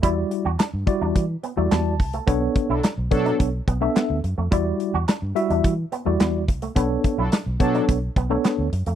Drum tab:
HH |x-x-x-x-x-x-x-ox|x-x-x-xxx-x-x-x-|x-x-x-xxx-x-x-xx|x-x-x-xxx-x-x-xx|
CP |----x-------x---|----x-------x---|----x-------x---|----x-------x---|
SD |----o-------o---|----o-------o---|----o-------o---|----o-------o---|
BD |o-----o-o-----o-|o-o---o-o-o-----|o-------o-----o-|o-o---o-o-o-----|